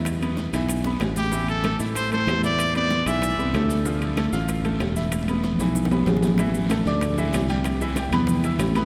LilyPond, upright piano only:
\new Staff \with { instrumentName = "Upright piano" } { \time 4/4 \key e \phrygian \tempo 4 = 190 <e' e''>8 <b b'>4 <e e'>4 <b b'>8 <gis gis'>4 | <e e'>4 <a a'>8 <e' e''>4 <a a'>4 <e' e''>8~ | <e' e''>8 <b b'>4 <e e'>4 <b b'>8 <a a'>4 | <f f'>4 <a a'>8 <f' f''>4 <a a'>4 <e' e''>8~ |
<e' e''>8 <b b'>4 <e e'>4 <b b'>8 <gis gis'>4 | <e e' e''>4 <a a' a''>8 <d' d'' d'''>4 <e e' e''>4 <g g' g''>8~ | <g g' g''>8 <e e' e''>8 <g g' g''>8 <b b' b''>4 <e' e'' e'''>4 <b b' b''>8 | }